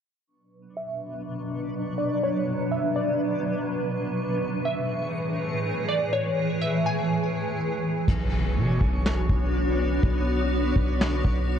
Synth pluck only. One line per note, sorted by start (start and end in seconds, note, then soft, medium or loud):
0.77 1.95 E5 medium
1.98 2.21 D5 medium
2.23 2.69 C#5 medium
2.71 2.95 E5 medium
2.96 3.65 D5 medium
4.65 5.84 E5 medium
5.88 6.12 D5 medium
6.13 6.59 C#5 loud
6.61 6.85 E5 medium
6.86 8.04 G#5 medium